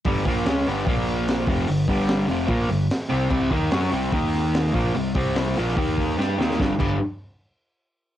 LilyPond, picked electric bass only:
\new Staff \with { instrumentName = "Picked electric bass" } { \clef bass \time 4/4 \key c \major \tempo 4 = 147 g,,8 bes,,8 cis,8 g,,8 bes,,4. f,,8 | g,,8 g,,4 f,,8 bes,,8 g,,8 r8 c,8 | c,8 ees,8 fis,8 c,8 ees,4. bes,,8 | c,8 c,4 bes,,8 ees,4 g,8 ees,8 |
g,,8 g,,8 r2. | }